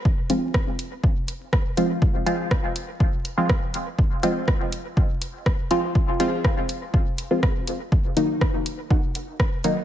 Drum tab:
HH |-x-x-x-x|-x-x-x-x|-x-x-x-x|-x-x-x-x|
SD |--r---r-|--r---r-|--r---r-|--r---r-|
BD |o-o-o-o-|o-o-o-o-|o-o-o-o-|o-o-o-o-|

HH |-x-x-x-x|
SD |--r---r-|
BD |o-o-o-o-|